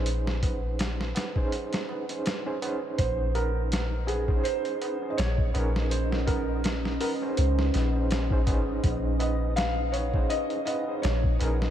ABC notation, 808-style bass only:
X:1
M:4/4
L:1/8
Q:"Swing 16ths" 1/4=82
K:Bbm
V:1 name="808-style bass" clef=bass
B,,,3 z4 z | B,,,4 z2 B,,, B,,,- | B,,,3 z D,, B,,,2 A,,, | B,,,4 z2 B,,, B,,, |]